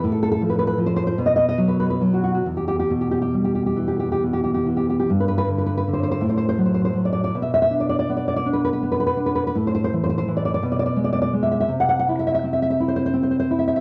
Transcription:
\new Staff \with { instrumentName = "Nylon-string guitar" } { \time 6/8 \key e \minor \tempo 4. = 53 << { r32 a'32 a'32 a'32 r32 b'32 b'32 b'32 r32 c''32 c''32 c''32 r32 dis''32 dis''32 dis''32 r32 b'32 b'32 b'32 r32 fis'32 fis'32 fis'32 | r32 g'32 g'32 g'32 r32 g'32 g'32 g'32 r32 g'32 g'32 g'32 r32 g'32 g'32 g'32 r32 g'32 g'32 g'32 r32 g'32 g'32 g'32 | \key b \phrygian r32 b'32 b'32 b'32 r32 b'32 b'32 b'32 r32 c''32 c''32 c''32 r32 c''32 c''32 c''32 r32 c''32 c''32 c''32 r32 d''32 d''32 d''32 | r32 e''32 e''32 e''32 r32 d''32 d''32 d''32 r32 d''32 d''32 d''32 r32 b'32 b'32 b'32 r32 b'32 b'32 b'32 r32 b'32 b'32 b'32 |
r32 c''32 c''32 c''32 r32 c''32 c''32 c''32 r32 d''32 d''32 d''32 r32 d''32 d''32 d''32 r32 d''32 d''32 d''32 r32 e''32 e''32 e''32 | r32 fis''32 fis''32 fis''32 r32 e''32 e''32 e''32 r32 e''32 e''32 e''32 r32 c''32 c''32 c''32 r32 c''32 c''32 c''32 r32 e''32 e''32 e''32 | } \\ { a,8 f8 f8 b,8 fis8 fis8 | e,8 b,8 g8 e8 b,8 e8 | g,8 d8 d8 a,8 fis8 fis8 | b,8 d'8 b8 d'8 b8 d'8 |
a,8 e8 e8 b,8 gis8 gis8 | c8 e'8 c'8 e'8 c'8 e'8 | } >> }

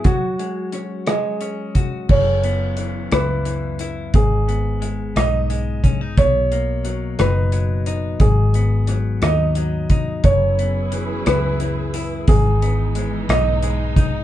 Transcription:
<<
  \new Staff \with { instrumentName = "Grand piano" } { \time 6/8 \key fis \mixolydian \tempo 4. = 59 fis'4. <gis' dis''>4. | cis''4. b'4. | gis'4. dis''4. | cis''4. b'4. |
gis'4. dis''4. | cis''4. b'4. | gis'4. dis''4. | }
  \new Staff \with { instrumentName = "String section" } { \time 6/8 \key fis \mixolydian r2. | r2. | r2. | r2. |
r2. | <fis cis' e' gis' b'>2. | <e gis dis'>2. | }
  \new Staff \with { instrumentName = "Clean electric guitar" } { \time 6/8 \key fis \mixolydian <fis fis'>8 gis8 cis'8 gis8 cis'8 fis'8 | fis,8 b8 e8 e'8 e8 e'8 | gis,8 b8 gis8 dis'8 gis8 cis'16 dis'16 | b,8 ais8 fis8 dis'8 fis8 dis'8 |
gis,8 b8 fis8 dis'8 fis8 dis'8 | fis,8 b8 e8 e'8 e8 e'8 | gis,8 b8 gis8 dis'8 gis8 dis'8 | }
  \new Staff \with { instrumentName = "Fingered electric bass" } { \clef bass \time 6/8 \key fis \mixolydian r2. | fis,,4. cis,4. | gis,,4. b,,4. | b,,4. fis,,4. |
gis,,4. dis,4. | fis,,4. cis,4. | gis,,4. b,,4. | }
  \new DrumStaff \with { instrumentName = "Drums" } \drummode { \time 6/8 <hh bd>8 hh8 <hh ss>8 <hh ss>8 hh8 <hh bd>8 | <cymc bd>8 hh8 hh8 <hh ss>8 hh8 hh8 | <hh bd>8 hh8 hh8 <hh ss>8 hh8 <hh bd>8 | <hh bd>8 hh8 hh8 <hh ss>8 hh8 hh8 |
<hh bd>8 hh8 <hh ss>8 <hh ss>8 hh8 <hh bd>8 | <hh bd>8 hh8 hh8 <hh ss>8 hh8 hh8 | <hh bd>8 hh8 hh8 <hh ss>8 hh8 <hh bd>8 | }
>>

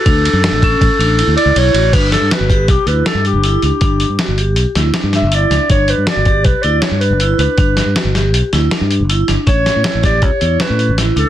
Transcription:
<<
  \new Staff \with { instrumentName = "Clarinet" } { \time 5/4 \key g \lydian \tempo 4 = 159 a'2.~ a'8 d''8 cis''4 | b'8 a'8 b'4 g'8 b'8 a'8 g'4 g'8~ | g'4. r2 e''8 d''4 | cis''8 b'8 d''4 b'8 d''8 cis''8 b'4 b'8~ |
b'4. r2. r8 | cis''4. d''8 cis''4 b'4 r8 a'8 | }
  \new Staff \with { instrumentName = "Vibraphone" } { \time 5/4 \key g \lydian d'4 d'8 cis'4 d'8 e'4 e'8 fis'8 | d'4 fis'8 g'4 e'8 d'4 e'8 d'8 | d'4 fis'8 g'4 e'8 d'4 e'8 d'8 | d'4 fis'8 g'4 e'8 d'4 e'8 d'8 |
d'4 fis'8 g'4 e'8 d'4 e'8 d'8 | cis'4 e'8 g'4 e'8 cis'4 e'8 d'8 | }
  \new Staff \with { instrumentName = "Fingered electric bass" } { \clef bass \time 5/4 \key g \lydian d,8. fis,8 a,,8. a,,16 r16 a,,8. d,16 r16 cis,16 b,,8 a,,8 | g,,8. g,16 r16 g,,8. b,,16 r16 d,8 r16 g,8 g,,8. cis,16 r16 | g,,8. g,16 r16 g,,8. b,,16 r16 d,8 r16 g,8 g,,8. cis,16 r16 | g,,8. g,16 r16 g,,8. b,,16 r16 d,8 r16 g,8 g,,8. cis,16 r16 |
g,,8. g,16 r16 g,,8. b,,16 r16 d,8 r16 g,8 g,,8. g,,16 r16 | a,,8. a,16 r16 a,,8. cis,16 r16 e,8 r16 a,8 a,,8. cis,16 r16 | }
  \new DrumStaff \with { instrumentName = "Drums" } \drummode { \time 5/4 <bd cymr>8 cymr8 <cymr sn>8 <bd cymr>8 <bd cymr>8 cymr8 cymr8 cymr8 cymr8 cymr8 | <cymc hh bd>8 <hh sn>8 <hh sn>8 <hh bd>8 <hh bd>8 hh8 <hh sn>8 hh8 hh8 hh8 | <hh bd>8 hh8 <hh sn>8 hh8 hh8 <hh sn>8 <hh sn>8 <hh sn>8 hh8 <hh sn>8 | <hh bd>8 hh8 <hh sn>8 <hh bd>8 <hh bd>8 hh8 <hh sn>8 hh8 hh8 hh8 |
<hh bd>8 <hh sn>8 <hh sn>8 <hh sn>8 hh8 <hh sn>8 <hh sn>8 hh8 hh8 <hh sn>8 | <hh bd>8 <hh sn>8 <hh sn>8 <hh bd sn>8 <hh bd>8 hh8 <hh sn>8 hh8 <hh sn>8 hh8 | }
>>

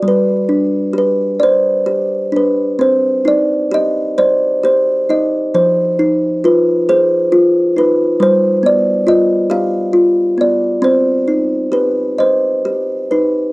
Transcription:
\new Staff \with { instrumentName = "Kalimba" } { \time 6/8 \key c \minor \tempo 4. = 44 << { b'4 b'8 c''4 b'8 | c''8 d''8 ees''8 d''8 c''8 ees''8 | c''4 b'8 c''4 b'8 | c''8 d''8 ees''8 f''4 d''8 |
c''4 b'8 c''4 b'8 | } \\ { g8 d'8 g'8 d''8 g'8 d'8 | c'8 ees'8 g'8 c''8 g'8 ees'8 | f8 ees'8 f'8 aes'8 f'8 ees'8 | g8 b8 f'8 g'8 f'8 b8 |
c'8 ees'8 g'8 ees''8 g'8 ees'8 | } >> }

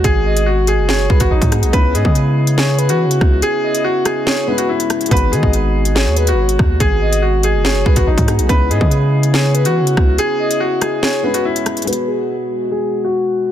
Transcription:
<<
  \new Staff \with { instrumentName = "Soft synth lead" } { \time 4/4 \key gis \minor \tempo 4 = 142 r8 dis''8 r4 cis''8 b'8 r4 | r8 dis''8 r4 cis''8 b'8 r4 | r8 dis''8 r4 cis''8 b'8 r4 | r8 dis''8 r4 cis''8 b'8 r4 |
r8 dis''8 r4 cis''8 b'8 r4 | r8 dis''8 r4 cis''8 b'8 r4 | r8 dis''8 r4 cis''8 b'8 r4 | r1 | }
  \new Staff \with { instrumentName = "Grand piano" } { \time 4/4 \key gis \minor gis'4 fis'8 gis'8 gis'8. fis'16 dis'4 | b'8 gis'4. gis'8. fis'4~ fis'16 | gis'4 fis'8 gis'8 gis'8. fis'16 e'4 | b'8 gis'4. gis'8. fis'4~ fis'16 |
gis'4 fis'8 gis'8 gis'8. fis'16 dis'4 | b'8 gis'4. gis'8. fis'4~ fis'16 | gis'4 fis'8 gis'8 gis'8. fis'16 e'4 | b'8 gis'4. gis'8. fis'4~ fis'16 | }
  \new Staff \with { instrumentName = "Felt piano" } { \time 4/4 \key gis \minor <gis b dis' fis'>2.~ <gis b dis' fis'>8 <gis b dis' gis'>8 | <gis b cis' e'>1~ | <gis b cis' e'>2~ <gis b cis' e'>8 <gis b cis' e'>4. | <gis b dis' fis'>1~ |
<gis b dis' fis'>2.~ <gis b dis' fis'>8 <gis b dis' gis'>8 | <gis b cis' e'>1~ | <gis b cis' e'>2~ <gis b cis' e'>8 <gis b cis' e'>4. | <gis b fis'>1 | }
  \new Staff \with { instrumentName = "French horn section" } { \clef bass \time 4/4 \key gis \minor <b, gis fis'>1 | <cis b e'>1~ | <cis b e'>1 | <b, gis fis'>1~ |
<b, gis fis'>1 | <cis b e'>1~ | <cis b e'>1 | <b, gis fis'>1 | }
  \new Staff \with { instrumentName = "808-style bass" } { \clef bass \time 4/4 \key gis \minor gis,,4.~ gis,,16 fis,,8. b,,16 gis,,16 gis,,16 gis,8 b,,16 | cis,8 gis,16 cis2 e16. cis16. cis,8 | r1 | gis,,8 dis16 gis,,4. dis,8~ dis,32 gis,,8~ gis,,32 dis,8 |
gis,,4.~ gis,,16 fis,,8. b,,16 gis,,16 gis,,16 gis,8 b,,16 | cis,8 gis,16 cis2 e16. cis16. cis,8 | r1 | r1 | }
  \new DrumStaff \with { instrumentName = "Drums" } \drummode { \time 4/4 <hh bd>8. hh16 r8 hh8 sn8 bd16 <hh bd>16 r16 <hh bd>16 <hh ss>16 hh16 | <hh bd>8 hh16 bd16 hh8. hh16 sn8 hh16 hh16 r16 hh16 <bd ss>8 | hh8. hh16 r8 <hh ss>8 sn8. hh16 r16 hh16 <hh ss>16 hh32 hh32 | <hh bd>32 hh16. hh16 bd16 hh8. hh16 sn8 hh16 hh16 r16 hh16 <bd ss>8 |
<hh bd>8. hh16 r8 hh8 sn8 bd16 <hh bd>16 r16 <hh bd>16 <hh ss>16 hh16 | <hh bd>8 hh16 bd16 hh8. hh16 sn8 hh16 hh16 r16 hh16 <bd ss>8 | hh8. hh16 r8 <hh ss>8 sn8. hh16 r16 hh16 <hh ss>16 hh32 hh32 | hh32 hh8. r32 r4 r4 r4 | }
>>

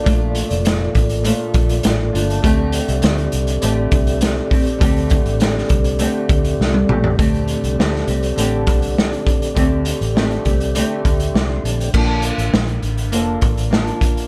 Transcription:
<<
  \new Staff \with { instrumentName = "Tonewheel organ" } { \time 4/4 \key d \phrygian \tempo 4 = 101 << { r1 | r1 | r1 | r1 |
r2. d'''16 c'''16 a''16 g''16~ | g''16 r2. r8. | } \\ { <bes f' a' d''>1 | <c' g' a' d''>1~ | <c' g' a' d''>1 | <c' g' a' d''>1~ |
<c' g' a' d''>1 | r1 | } >> }
  \new Staff \with { instrumentName = "Nylon-string guitar" } { \time 4/4 \key d \phrygian <bes, a d' f'>2 <bes, a d' f'>4. <a d' f'>8 | <d a c' g'>2 <d a c' g'>4. <a c' g'>8 | <d a c' g'>2 <d a c' g'>4. <a c' g'>8 | <d a c' g'>4 <d a c' g'>8 <a c' g'>8 <d a c' g'>2 |
<d a c' g'>4 <d a c' g'>8 <a c' g'>8 <d a c' g'>2 | <bes d' f' a'>2 <bes d' f' a'>4 <bes d' f' a'>4 | }
  \new Staff \with { instrumentName = "Fingered electric bass" } { \clef bass \time 4/4 \key d \phrygian bes,,8. f,,8. a,,8. r16 bes,,8 a,,8 g,,8 | d,8. c,16 d,8 c,8 a,,8 c,4 r8 | d,8. a,,8. c,8. r16 d,8 c,8 bes,,8 | d,8. c,16 d,8 c,8 a,,8 c,4 r8 |
d,8. a,,8. c,8. r16 d,8 c,8 bes,,8 | bes,,8. a,,16 bes,,8 a,,8 f,,8 a,,4 r8 | }
  \new DrumStaff \with { instrumentName = "Drums" } \drummode { \time 4/4 <hh bd>8 hh16 hh16 <hh sn>8 <hh bd>16 hh16 hh8 <hh bd>16 hh16 <hh sn>8 hh16 hh16 | <hh bd>8 hh16 hh16 <hh sn>16 hh16 hh16 hh16 hh8 <hh bd>16 hh16 <hh sn>8 <hho bd>16 hh16 | <hh bd>16 hh16 <hh bd>16 hh16 <hh sn>16 sn16 <hh bd>16 hh16 hh8 <hh bd>16 hh16 sn16 tommh16 toml16 tomfh16 | <hh bd>16 hh16 hh16 hh16 sn16 sn16 hh16 hh16 hh8 <hh bd>16 hh16 sn16 hh16 <hh bd>16 hh16 |
<hh bd>8 hh16 hh16 sn16 hh16 <hh bd>16 hh16 hh8 <hh bd>16 hh16 sn8 hh16 hh16 | <cymc bd>8 hh16 hh16 sn16 hh16 hh16 hh16 hh8 <hh bd>16 hh16 sn16 hh16 <hh bd>16 hh16 | }
>>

